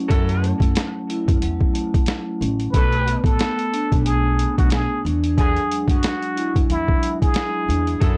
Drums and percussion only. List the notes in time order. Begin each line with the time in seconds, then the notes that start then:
0.10 kick, closed hi-hat
0.29 closed hi-hat
0.44 closed hi-hat
0.60 kick, closed hi-hat
0.75 snare, closed hi-hat
1.10 closed hi-hat
1.28 kick, closed hi-hat
1.42 closed hi-hat
1.61 kick
1.75 closed hi-hat
1.94 kick, closed hi-hat
2.06 snare, closed hi-hat
2.42 closed hi-hat
2.60 closed hi-hat
2.74 kick, closed hi-hat
2.92 closed hi-hat
3.08 closed hi-hat
3.24 kick, closed hi-hat
3.39 snare, closed hi-hat
3.59 closed hi-hat
3.74 closed hi-hat
3.92 kick, closed hi-hat
4.06 closed hi-hat
4.39 closed hi-hat
4.58 kick, closed hi-hat
4.70 snare, closed hi-hat
5.06 closed hi-hat
5.24 closed hi-hat
5.38 kick, closed hi-hat
5.56 closed hi-hat
5.71 closed hi-hat
5.88 kick, closed hi-hat
6.03 snare, closed hi-hat
6.22 closed hi-hat
6.37 closed hi-hat
6.56 kick, closed hi-hat
6.70 closed hi-hat
6.88 kick
7.03 closed hi-hat
7.22 kick, closed hi-hat
7.34 snare, closed hi-hat
7.70 closed hi-hat
7.87 closed hi-hat
8.01 kick, closed hi-hat